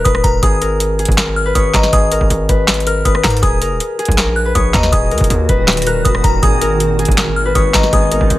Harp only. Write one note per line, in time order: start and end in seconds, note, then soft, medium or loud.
0.00 0.43 G#4 medium
0.00 0.11 A#4 medium
0.00 0.47 C#5 medium
0.00 0.53 D#5 medium
0.05 0.30 B4 medium
0.24 0.61 A#4 medium
0.43 0.99 G#4 loud
0.62 1.17 A#4 medium
0.99 1.92 G#4 medium
1.18 1.52 A#4 medium
1.46 2.18 B4 medium
1.55 3.46 C#5 medium
1.74 3.52 D#5 medium
1.93 3.42 G#4 loud
2.12 2.55 A#4 medium
2.49 2.93 B4 medium
2.87 3.11 A#4 medium
3.05 3.30 B4 medium
3.24 3.61 A#4 medium
3.42 3.98 G#4 loud
3.62 4.18 A#4 loud
3.99 4.92 G#4 medium
4.18 4.51 A#4 medium
4.45 5.17 B4 medium
4.55 6.46 C#5 medium
4.74 6.52 D#5 medium
4.92 6.43 G#4 medium
5.11 5.55 A#4 medium
5.49 5.92 B4 medium
5.87 6.11 A#4 medium
6.05 6.30 B4 medium
6.24 6.61 A#4 medium
6.43 6.99 G#4 loud
6.61 7.17 A#4 loud
6.99 7.92 G#4 medium
7.17 7.51 A#4 medium
7.45 8.18 B4 medium
7.55 8.39 C#5 medium
7.74 8.39 D#5 medium
7.93 8.39 G#4 loud
8.12 8.39 A#4 medium